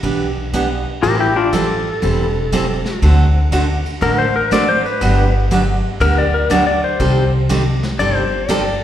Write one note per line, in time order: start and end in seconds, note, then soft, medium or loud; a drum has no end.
0.03 0.83 B1 medium
0.03 0.26 E3 medium
0.03 0.26 B3 medium
0.03 0.26 D4 medium
0.03 0.26 G4 medium
0.03 kick soft
0.03 ride medium
0.53 0.65 E3 medium
0.53 0.65 B3 medium
0.53 0.66 D4 medium
0.53 0.66 G4 medium
0.53 kick soft
0.53 hi-hat pedal medium
0.53 ride medium
1.03 1.83 A1 medium
1.03 1.26 E3 medium
1.03 1.26 G3 medium
1.03 1.26 C4 medium
1.03 1.26 E4 medium
1.03 1.19 G4 medium
1.03 1.26 A4 medium
1.03 1.19 A#4 loud
1.03 kick soft
1.03 ride medium
1.19 1.36 E4 medium
1.19 1.36 G4 medium
1.36 1.53 D4 medium
1.36 1.53 F4 medium
1.52 1.65 E3 medium
1.52 1.65 G3 medium
1.52 1.65 C4 medium
1.52 1.65 E4 medium
1.52 2.98 A4 loud
1.52 1.66 A4 medium
1.52 kick soft
1.52 hi-hat pedal medium
1.52 ride medium
2.02 2.82 E1 medium
2.02 2.25 E3 medium
2.02 2.25 G3 medium
2.02 2.25 C4 medium
2.02 2.25 E4 medium
2.02 2.25 A4 medium
2.02 kick soft
2.02 ride medium
2.52 2.64 E3 medium
2.52 2.64 G3 medium
2.52 2.65 C4 medium
2.52 2.65 E4 medium
2.52 2.65 A4 medium
2.52 kick soft
2.52 hi-hat pedal medium
2.52 ride medium
2.85 snare soft
3.02 3.82 D2 loud
3.02 3.25 D3 medium
3.02 3.25 A3 medium
3.02 3.25 C4 medium
3.02 3.25 F#4 medium
3.02 3.25 A4 medium
3.02 kick soft
3.02 ride medium
3.52 3.64 D3 medium
3.52 3.64 A3 medium
3.52 3.64 C4 medium
3.52 3.64 F#4 medium
3.52 3.64 A4 medium
3.52 kick soft
3.52 hi-hat pedal medium
3.52 ride medium
3.86 ride medium
4.01 4.81 A1 medium
4.01 4.24 D3 medium
4.01 4.24 A3 medium
4.01 4.24 C4 medium
4.01 4.25 F#4 medium
4.01 4.24 A4 medium
4.01 4.18 A#4 medium
4.01 kick soft
4.01 ride medium
4.18 4.34 C5 medium
4.36 4.51 A#4 medium
4.51 4.63 D3 medium
4.51 4.63 A3 medium
4.51 4.63 C4 medium
4.51 4.64 F#4 medium
4.51 4.64 A4 medium
4.51 4.68 D5 medium
4.51 kick soft
4.51 hi-hat pedal medium
4.51 ride medium
4.69 4.84 C5 medium
4.86 5.33 B4 medium
4.86 ride soft
5.01 5.81 G1 medium
5.01 5.24 D3 medium
5.01 5.24 F#3 medium
5.01 5.24 B3 medium
5.01 5.24 D4 medium
5.01 5.24 G4 medium
5.01 kick soft
5.01 ride medium
5.51 5.63 D3 medium
5.51 5.63 F#3 medium
5.51 5.63 B3 medium
5.51 5.63 D4 medium
5.51 5.63 G4 medium
5.51 kick soft
5.51 hi-hat pedal medium
5.51 ride medium
6.00 6.80 D2 medium
6.00 6.23 D3 medium
6.00 6.23 F#3 medium
6.00 6.23 B3 medium
6.00 6.23 D4 medium
6.00 6.24 G4 medium
6.00 6.17 A#4 loud
6.00 kick soft
6.00 ride medium
6.18 6.34 D5 medium
6.34 6.50 A#4 medium
6.50 6.62 D3 medium
6.50 6.62 F#3 medium
6.50 6.62 B3 medium
6.50 6.62 D4 medium
6.50 6.63 G4 medium
6.50 6.65 D5 medium
6.50 kick soft
6.50 hi-hat pedal medium
6.50 ride medium
6.67 6.83 D5 medium
6.84 7.32 C5 medium
7.00 7.79 C2 medium
7.00 7.22 C3 medium
7.00 7.22 D#3 medium
7.00 7.23 G3 medium
7.00 7.23 C4 medium
7.00 7.23 G4 medium
7.00 7.23 A4 medium
7.00 kick soft
7.00 ride medium
7.49 7.61 C3 medium
7.49 7.62 D#3 medium
7.49 7.62 G3 medium
7.49 7.62 C4 medium
7.49 7.62 G4 medium
7.49 7.62 A4 medium
7.49 kick soft
7.49 hi-hat pedal medium
7.49 ride medium
7.83 snare soft
7.83 ride medium
7.99 8.79 G1 medium
7.99 8.22 C3 medium
7.99 8.22 D#3 medium
7.99 8.22 G3 medium
7.99 8.22 C4 medium
7.99 8.23 G4 medium
7.99 8.23 A4 medium
7.99 8.15 D5 loud
7.99 kick soft
7.99 ride medium
8.15 8.49 C5 medium
8.49 8.61 C3 medium
8.49 8.61 D#3 medium
8.49 8.61 G3 medium
8.49 8.61 C4 medium
8.49 8.61 G4 medium
8.49 8.61 A4 medium
8.49 8.84 D5 medium
8.49 kick soft
8.49 hi-hat pedal medium
8.49 ride medium